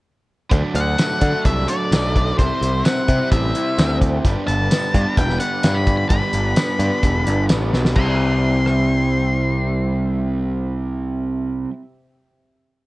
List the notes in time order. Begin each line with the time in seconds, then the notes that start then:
0.50 D2 D3 F#3 A3 D4 F#4 A4 D5 A5, kick, closed hi-hat
0.75 D2 D3 F#5, closed hi-hat
0.98 A3, snare, closed hi-hat, tambourine
1.20 D3 F#3 A3 D4, kick, closed hi-hat
1.45 C2 F#3 E5, kick, closed hi-hat
1.68 D4 D5, closed hi-hat
1.91 B1 D3 F#3 A3 D4, snare, closed hi-hat, tambourine
2.16 D3, kick, closed hi-hat
2.38 C2 C3 G3 C4 E4 G4 C5 E5 C6, kick, closed hi-hat
2.61 C2 C3, closed hi-hat
2.85 C4 F#5, snare, closed hi-hat, tambourine
3.08 C3 G3 C4 E4, kick, closed hi-hat
3.32 A1 G3 E5, kick, closed hi-hat
3.55 E4, closed hi-hat
3.78 D2 C3 G3 C4 E4, snare, closed hi-hat, tambourine
4.02 C3, kick, closed hi-hat
4.24 G1 G2 D3 G3 B3 D4 B4 D5 B5, kick, closed hi-hat
4.47 G1 D3 A5, closed hi-hat
4.71 B3, snare, closed hi-hat, tambourine
4.94 G2 D3 G3 B3 D4, kick, closed hi-hat
5.17 E1 G3 G5, kick, closed hi-hat
5.30 snare
5.40 D4 F#5, closed hi-hat
5.63 G2 D3 G3 B3 D4, snare, closed hi-hat, tambourine
5.74 B5
5.87 D3, kick, closed hi-hat
5.97 B5
6.09 G1 G2 D3 G3 B3 D4 B5, kick, closed hi-hat
6.33 G1 D3, closed hi-hat
6.56 B3, snare, closed hi-hat, tambourine
6.79 G2 D3 G3 B3 D4, closed hi-hat
7.03 E1 G3, kick, closed hi-hat
7.27 G1 D4, closed hi-hat
7.49 A1 G2 D3 G3 B3 D4, snare, closed hi-hat, tambourine
7.73 B1 D3, snare
7.85 snare
7.95 C2 C3 G3 C4 G4 E5 G5 C6, kick, crash
8.00 E4
8.66 cross-stick